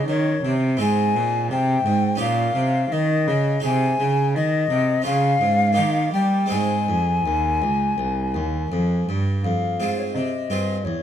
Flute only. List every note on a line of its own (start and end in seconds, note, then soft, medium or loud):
0.09 0.54 C#5 medium
0.82 1.47 G#5 loud
1.52 2.20 G5 loud
2.21 2.94 F5 medium
2.92 3.64 D#5 loud
3.65 4.34 G#5 loud
4.36 5.05 D#5 loud
5.06 6.12 F5 loud
6.14 6.53 G5 medium
6.52 9.09 G#5 loud
9.43 9.93 F5 medium
9.98 10.04 C#5 medium
10.13 10.86 D#5 medium
10.84 11.03 C#5 medium